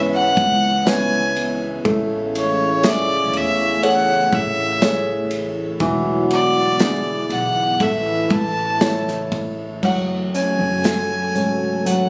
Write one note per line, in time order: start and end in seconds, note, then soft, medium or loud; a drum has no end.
0.00 0.33 G#1 medium
0.00 1.81 C#3 medium
0.00 1.81 E3 medium
0.00 1.81 G#3 medium
0.00 1.81 B3 medium
0.00 0.86 C#4 medium
0.00 0.86 E4 soft
0.00 9.80 E4 medium
0.00 0.87 B4 medium
0.14 0.90 F#5 loud
0.37 1.81 C#2 loud
0.37 kick loud
0.37 ride medium
0.86 1.82 C#4 medium
0.86 1.82 E4 medium
0.86 1.82 B4 medium
0.86 1.61 G#5 loud
0.86 snare loud
0.86 ride medium
0.86 tambourine medium
1.36 ride medium
1.85 3.33 A1 loud
1.85 5.77 C#3 medium
1.85 5.27 C#3 medium
1.85 5.76 E3 medium
1.85 5.76 A3 medium
1.85 5.27 C#4 loud
1.85 kick loud
1.85 ride medium
2.35 2.90 C#5 medium
2.35 ride medium
2.83 3.80 G#4 medium
2.83 3.80 A4 soft
2.83 3.80 E5 medium
2.83 snare loud
2.83 ride medium
2.83 tambourine medium
2.88 3.38 D5 loud
3.33 4.28 E2 medium
3.33 3.85 E5 loud
3.33 ride medium
3.83 4.79 G#4 medium
3.83 4.79 A4 soft
3.83 4.79 C#5 medium
3.83 4.36 F#5 loud
3.83 ride medium
4.33 5.77 A1 loud
4.33 5.32 E5 loud
4.33 kick loud
4.33 ride medium
4.82 5.78 G#4 medium
4.82 5.78 A4 medium
4.82 5.78 C#5 medium
4.82 snare loud
4.82 ride medium
4.82 tambourine medium
5.31 ride medium
5.80 7.26 E1 loud
5.80 7.78 D3 medium
5.80 7.76 E3 medium
5.80 9.80 E3 medium
5.80 7.27 F#3 medium
5.80 7.78 B3 medium
5.80 7.27 F#4 loud
5.80 kick loud
5.80 ride medium
6.31 7.34 D5 loud
6.31 ride medium
6.79 7.77 D4 medium
6.79 7.77 E4 soft
6.79 7.78 G#4 medium
6.79 snare loud
6.79 ride medium
6.79 tambourine medium
7.30 7.76 B1 medium
7.30 7.84 F#5 medium
7.30 ride medium
7.80 8.27 A1 loud
7.80 9.81 C#3 medium
7.80 9.29 E3 medium
7.80 9.81 A3 medium
7.80 9.80 A3 medium
7.80 9.29 E4 medium
7.80 8.34 E5 medium
7.80 kick medium
7.80 ride medium
8.30 9.79 A1 loud
8.30 9.33 A5 loud
8.30 kick medium
8.30 ride medium
8.81 9.80 E4 medium
8.81 9.80 A4 soft
8.81 9.80 C#5 medium
8.81 snare loud
8.81 ride medium
8.81 tambourine medium
9.08 snare soft
9.32 kick loud
9.32 ride medium
9.83 10.56 F#1 medium
9.83 12.09 C#3 medium
9.83 11.84 F#3 medium
9.83 12.09 F#3 medium
9.83 12.09 A3 medium
9.83 12.09 F#4 medium
9.83 12.09 A4 medium
9.83 10.04 F#5 medium
9.83 kick medium
9.83 crash medium
10.34 11.34 C#4 soft
10.34 11.89 G#5 medium
10.34 closed hi-hat medium
10.59 11.31 F#1 medium
10.84 12.09 A4 soft
10.84 snare medium
10.84 closed hi-hat medium
11.35 12.07 G#1 medium
11.35 12.09 C#4 soft
11.35 closed hi-hat medium
11.85 12.09 F#3 soft
11.85 12.09 F#5 medium
11.85 closed hi-hat medium